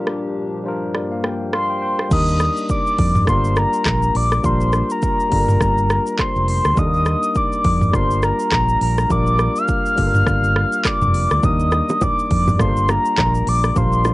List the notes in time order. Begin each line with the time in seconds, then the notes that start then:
Already playing: A#2 F3 G3 D4 F4 G4 A#4
0.07 cross-stick
0.63 G2 G3 A#3 D4 F4 C5
0.68 A#4
0.95 D5, cross-stick
1.12 F5
1.24 G5, cross-stick
1.53 F5 C6, cross-stick
1.70 G5
1.82 G5
1.99 cross-stick
2.09 D#2 G3 A#3 D4 D#4, kick, crash, shaker
2.13 A#4 D#6
2.28 shaker
2.40 cross-stick, shaker
2.57 shaker
2.69 D6, kick, shaker
2.87 shaker
2.99 F2, kick, open hi-hat
3.15 mid tom, shaker
3.25 G1 G3 A#3 D4 F4 C6, kick, cross-stick, shaker
3.30 A#4
3.45 shaker
3.57 A#5, cross-stick, shaker
3.73 shaker
3.86 A#1, kick, cross-stick, clap, shaker
4.03 shaker
4.15 A#1 D6, open hi-hat
4.32 cross-stick, shaker
4.43 A#1 G3 A#3 D4 F4 A#4 C6, kick, shaker
4.61 shaker
4.73 cross-stick, shaker
4.90 A#5, shaker
5.02 kick, shaker
5.20 shaker
5.29 G1 G3 A#3 D4 F4, kick, open hi-hat
5.34 A4
5.41 A#4
5.48 mid tom, shaker
5.60 G1, kick, cross-stick, shaker
5.78 shaker
5.90 cross-stick, shaker
6.06 shaker
6.19 C6, kick, cross-stick, clap, shaker
6.36 F1, shaker
6.48 C6, open hi-hat
6.65 D2, cross-stick, shaker
6.75 D#2 G3 A#3 D4 D#4 D#6, kick, shaker
6.80 A4
6.86 A#4
6.94 shaker
7.06 cross-stick, shaker
7.23 shaker
7.35 D6, kick, shaker
7.53 shaker
7.64 F2, kick, open hi-hat
7.81 mid tom, shaker
7.91 G1 G3 A#3 D4 F4 C6, kick, cross-stick, shaker
7.96 A#4
8.11 shaker
8.23 A#5, cross-stick, shaker
8.40 shaker
8.52 A#1 A#5, kick, cross-stick, clap, shaker
8.69 shaker
8.81 A#1 A#5, open hi-hat
8.98 cross-stick, shaker
9.09 A#1 G3 A#3 D4 F4 A#4 D6, kick, shaker
9.27 shaker
9.39 cross-stick, shaker
9.56 F6, shaker
9.68 kick, shaker
9.86 shaker
9.95 G1 G3 A#3 D4 F4, kick, open hi-hat, shaker
10.00 A4
10.07 A#4
10.14 mid tom, shaker
10.26 G1, kick, cross-stick, shaker
10.44 shaker
10.56 cross-stick
10.72 shaker
10.85 D6, kick, cross-stick, clap, shaker
11.02 F1, mid tom, shaker
11.14 open hi-hat, shaker
11.31 D2, cross-stick, shaker
11.41 D#2 F3 A#3 D4 D#4 D#6, kick, low conga, shaker
11.46 G3 A#4
11.60 shaker
11.72 cross-stick, high bongo, shaker
11.89 low bongo, shaker
12.01 D6, kick, high bongo, low conga, shaker
12.19 shaker
12.31 F2, kick, open hi-hat
12.47 mid tom, low bongo, shaker
12.57 G1 G3 A#3 D4 F4 C6, kick, cross-stick, low conga, shaker
12.62 A4
12.69 A#4
12.77 shaker
12.89 A#5, cross-stick, low bongo, shaker
13.06 shaker
13.18 A#1, kick, cross-stick, clap, high bongo, shaker
13.35 shaker
13.47 A#1 D6, open hi-hat
13.64 cross-stick, shaker
13.75 A#1 G3 A#3 D4 F4 A#4 C6, kick, low conga, shaker
13.93 shaker
14.05 cross-stick, high bongo, shaker